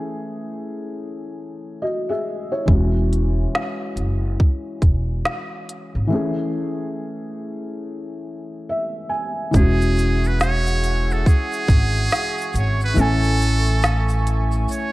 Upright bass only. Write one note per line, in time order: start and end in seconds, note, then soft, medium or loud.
2.68 3.43 E1 loud
3.96 4.34 F#1 medium
4.82 5.20 E1 medium
5.95 6.09 G#1 medium
9.54 11.21 E1 medium
11.69 12.06 G#1 medium
12.54 12.92 G#1 medium
12.97 14.64 A1 loud